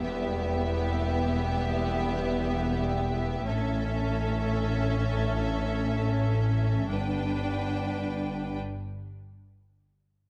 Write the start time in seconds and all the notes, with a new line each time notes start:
0.02 E1 E2 G3 B3 G4 E5
3.45 A1 A2 A3 C#4 A4 E5
6.90 G1 G2 B3 D4 B4 G5